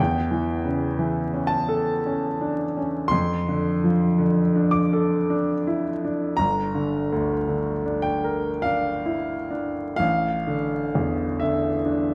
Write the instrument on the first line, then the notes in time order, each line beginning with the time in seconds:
grand piano
Already playing: G5
0.00 E2
0.31 E3
0.65 C#3
0.99 E3
1.34 C#4
1.47 A5
1.68 A4
2.06 C#4
2.41 D4
2.77 C#4
3.08 F2 C6
3.48 D3
3.84 F3
4.19 D3
4.55 D4
4.71 D6
4.93 A4
5.30 D4
5.67 E4
6.05 D4
6.37 G1 A#5
6.75 D3
7.12 D2
7.48 D3
7.86 D4
8.02 G5
8.24 A#4
8.62 D4 F5
9.06 E4
9.51 D4
9.96 A1 F5
10.47 D3
10.95 E2
11.40 D3 E5
11.86 D4